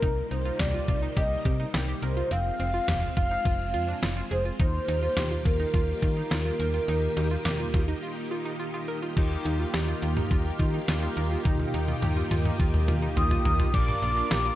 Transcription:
Already playing: string machine A#3, soft synth lead A#4
0.02 fm bass C2, string machine C3 G3 D#4, synth pluck D#4, kick, closed hi-hat
0.31 fm bass C2, synth pluck D#4, soft synth lead C5, closed hi-hat
0.45 synth pluck F4
0.59 fm bass C2, synth pluck G4, soft synth lead D5, snare, closed hi-hat, mid tom
0.74 synth pluck F4
0.88 fm bass C2, synth pluck F4, soft synth lead D5, kick, closed hi-hat
1.03 synth pluck D#4
1.17 fm bass C2, synth pluck G4, soft synth lead D#5, kick, closed hi-hat
1.45 fm bass C3, synth pluck G4, kick, closed hi-hat
1.60 synth pluck D#4
1.74 fm bass C2, synth pluck G4, snare, closed hi-hat
1.88 synth pluck G4
2.02 fm bass C2, synth pluck A#4, soft synth lead C5, closed hi-hat
2.17 synth pluck F4
2.31 fm bass F1, string machine G#3 C4 F4, synth pluck C4, soft synth lead F5, closed hi-hat
2.60 fm bass F1, synth pluck C4, closed hi-hat
2.74 synth pluck F4
2.88 fm bass F1, synth pluck G4, snare, closed hi-hat, mid tom
3.03 synth pluck F4
3.17 fm bass F1, synth pluck F4, soft synth lead F5, kick, closed hi-hat
3.31 synth pluck D#4
3.45 fm bass F1, synth pluck F4, kick, closed hi-hat
3.74 fm bass F2, synth pluck F4, closed hi-hat
3.88 synth pluck D4
4.02 fm bass F1, synth pluck F4, snare, closed hi-hat
4.17 synth pluck F4
4.31 fm bass F1, synth pluck G#4, soft synth lead C5, closed hi-hat
4.45 synth pluck F4
4.60 fm bass D#2, string machine D#3 A#3 F4 G4, synth pluck D#4, soft synth lead C5, kick, closed hi-hat
4.88 fm bass D#2, synth pluck D#4, closed hi-hat
5.03 synth pluck F4, soft synth lead C5
5.17 fm bass D#2, synth pluck G4, snare, closed hi-hat, mid tom
5.31 synth pluck F4
5.45 fm bass D#2, synth pluck F4, soft synth lead A#4, kick, closed hi-hat
5.60 synth pluck D#4
5.74 fm bass D#2, synth pluck F4, kick, closed hi-hat
6.02 fm bass D#3, synth pluck F4, kick, closed hi-hat
6.17 synth pluck D#4
6.31 fm bass D#2, synth pluck F4, snare, closed hi-hat
6.45 synth pluck F4
6.60 fm bass D#2, synth pluck A#4, closed hi-hat
6.74 synth pluck F4
6.88 fm bass D#2, synth pluck D#4, string machine D#4, closed hi-hat
7.17 fm bass D#2, synth pluck D#4, closed hi-hat, cowbell
7.31 synth pluck F4
7.45 fm bass D#2, synth pluck G4, snare, closed hi-hat, mid tom
7.60 synth pluck F4
7.74 fm bass D#2, synth pluck F4, kick, closed hi-hat, cowbell
7.88 synth pluck D#4
8.03 synth pluck F4
8.31 synth pluck F4
8.45 synth pluck D#4
8.60 synth pluck F4
8.74 synth pluck F4
8.88 synth pluck A#4
9.02 synth pluck F4
9.17 fm bass D#2, string machine D#3 A#3 F4 G4, analog polysynth A#3 D#4 F4 G4, synth pluck D#4, kick, closed hi-hat, crash
9.45 fm bass D#2, synth pluck D#4, closed hi-hat
9.60 synth pluck F4
9.74 fm bass D#2, synth pluck G4, snare, closed hi-hat
9.88 synth pluck F4
10.02 fm bass D#2, synth pluck F4, closed hi-hat
10.17 synth pluck D#4, mid tom
10.31 fm bass D#2, synth pluck F4, kick, closed hi-hat
10.59 fm bass D#3, synth pluck F4, kick, closed hi-hat
10.74 synth pluck D#4
10.88 fm bass D#2, synth pluck F4, snare, closed hi-hat
11.02 synth pluck F4
11.17 fm bass D#2, synth pluck A#4, closed hi-hat
11.31 synth pluck F4
11.45 fm bass D#2, synth pluck D#4, string machine D#4, kick, closed hi-hat, high tom
11.60 high tom
11.74 fm bass D#2, synth pluck D#4, closed hi-hat
11.88 synth pluck F4, high tom
12.02 fm bass D#2, synth pluck G4, closed hi-hat, mid tom
12.17 synth pluck F4
12.31 fm bass D#2, synth pluck F4, closed hi-hat, mid tom
12.45 synth pluck D#4, mid tom
12.60 fm bass D#2, synth pluck F4, kick, closed hi-hat
12.74 mid tom
12.88 fm bass D#3, synth pluck F4, closed hi-hat, mid tom
13.02 synth pluck D#4
13.17 fm bass D#2, synth pluck F4, soft synth lead D#6, closed hi-hat, floor tom
13.31 synth pluck F4, floor tom
13.45 fm bass D#2, synth pluck A#4, soft synth lead D#6, closed hi-hat, floor tom
13.60 synth pluck F4, floor tom
13.74 fm bass A#1, analog polysynth A#3 D4 F4 A#4 D5, string machine A#3 D4 F4, synth pluck G4, soft synth lead D6, kick, closed hi-hat, crash
13.88 mid tom
14.02 fm bass A#1, synth pluck F4, soft synth lead D6, closed hi-hat
14.17 synth pluck F4
14.31 fm bass A#1, synth pluck G4, soft synth lead D6, snare, closed hi-hat
14.45 synth pluck F4

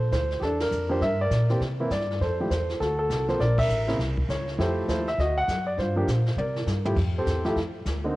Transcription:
Already playing: upright bass A#1, grand piano A4 C5
0.12 upright bass D2, grand piano C5, kick, snare, hi-hat pedal
0.30 snare
0.40 upright bass E2, grand piano G4 A4, brush sweep, kick, snare
0.45 grand piano D4
0.60 grand piano A#4, snare, ride
0.71 upright bass F2, hi-hat pedal
0.89 grand piano F3 A#3 D4 G4 C5
1.01 upright bass G2, grand piano A#4 E5, brush sweep, kick, snare
1.21 grand piano A#4 D5
1.30 upright bass A#2, kick, snare, hi-hat pedal
1.49 grand piano E3 A#3 C4 G4, snare
1.60 upright bass C3, brush sweep, kick, snare
1.80 grand piano E3 A#3 C4 E4
1.90 upright bass G2, grand piano D5, kick, snare, hi-hat pedal
2.01 snare
2.11 snare
2.20 upright bass F2, grand piano A4 C5, brush sweep, kick, snare
2.40 grand piano F3 A3 E4 G4
2.50 upright bass E2, grand piano C5, kick, snare, hi-hat pedal
2.69 snare
2.80 upright bass D2, grand piano F#4 A4, brush sweep, kick, snare
2.99 grand piano A4
3.10 upright bass C2, kick, snare, hi-hat pedal
3.28 grand piano F3 A#3 C4 A4 C5, snare
3.39 upright bass A#1, grand piano A#4 D5, brush sweep, kick, snare
3.58 grand piano A#4 E5, kick, ride
3.68 upright bass A1, hi-hat pedal
3.87 grand piano C#3 A#3 C4 E4, snare
3.99 upright bass C2, brush sweep, kick, snare
4.17 kick
4.28 upright bass C#2, grand piano C#5, kick, snare, hi-hat pedal
4.47 snare
4.58 upright bass F2, grand piano F3 A3 E4 G4 A4 C5, brush sweep, kick, snare
4.88 upright bass D#2, grand piano F3 A3 E4 A4 C5, kick, snare, hi-hat pedal
5.07 grand piano E5, snare
5.18 upright bass D2, grand piano F#4 D#5, brush sweep, kick, snare
5.37 grand piano F#5
5.48 upright bass F#2, kick, snare, hi-hat pedal
5.67 grand piano D5
5.78 upright bass G2, grand piano F4 C5, brush sweep, kick, snare
5.96 grand piano F3 A#3 D4 G4
6.08 upright bass A#2, kick, snare, hi-hat pedal
6.26 snare
6.36 upright bass C3, grand piano A#4 D5, high tom
6.56 snare
6.66 upright bass G2, snare, hi-hat pedal
6.85 grand piano F3 A3 E4 G4, floor tom
6.96 upright bass F2, brush sweep, kick, snare, crash
7.18 grand piano C4 G4 A4 C5
7.26 upright bass E2, kick, snare, hi-hat pedal
7.45 grand piano F3 A3 E4 G4 A4, snare
7.49 grand piano E4 F4
7.56 upright bass F2, brush sweep, kick, snare
7.86 upright bass D2, kick, snare, hi-hat pedal
8.04 grand piano D3 A#3 C4 D#4

